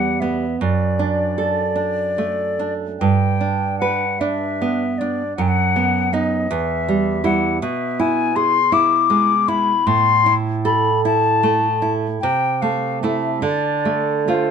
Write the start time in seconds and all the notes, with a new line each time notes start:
Already playing: E2 G3 F#5
0.20 B3 E5
0.60 F#2 D5
0.99 D4
1.38 A4
1.76 D4
2.18 A3
2.59 D4
3.00 G2 G5
3.41 D4
3.79 B4 F#5
4.20 D4 E5
4.62 B3
4.98 D4 D5
5.37 F#2 F#5
5.42 G5
5.48 F#5
5.76 B3
6.13 B3 D#4 D#5
6.51 E2 E5
6.89 G3
7.24 G3 E4 F#5
7.61 B2 E5
8.00 E4 G#5
8.36 G#4 C6
8.72 E4 D6
9.10 G#3
9.48 E4 B5
9.87 A2 C6
10.26 E4
10.65 A4 B5
11.05 E4 A5
11.43 A3
11.82 E4
12.21 C3 G5
12.62 A3 F5
13.02 A3 E4 E5
13.42 D3 D5
13.85 A3
14.28 A3 F4 C5